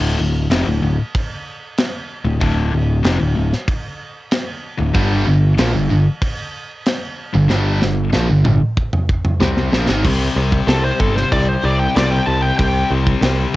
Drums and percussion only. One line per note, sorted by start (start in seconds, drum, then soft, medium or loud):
0.51 snare loud
0.51 crash medium
1.15 kick loud
1.15 crash medium
1.78 snare loud
1.78 crash medium
2.41 kick loud
2.41 crash medium
3.04 snare loud
3.04 crash medium
3.53 snare soft
3.68 kick loud
3.68 crash medium
4.31 snare loud
4.31 crash medium
4.95 kick loud
4.95 crash medium
5.58 snare loud
5.58 crash medium
6.22 kick loud
6.22 crash medium
6.86 snare loud
6.86 crash medium
7.50 snare medium
7.82 snare medium
8.13 snare medium
8.45 mid tom medium
8.77 kick medium
8.93 mid tom medium
9.09 kick loud
9.24 mid tom medium
9.41 snare loud
9.57 snare medium
9.73 snare loud
9.89 snare medium
10.04 kick loud
10.04 crash loud
10.04 crash medium
10.52 kick medium
10.68 snare loud
10.68 crash medium
11.00 kick medium
11.17 snare soft
11.32 kick loud
11.32 crash medium
11.96 snare loud
11.96 crash medium
12.59 kick loud
12.59 crash medium
13.07 kick medium
13.22 snare loud
13.22 crash medium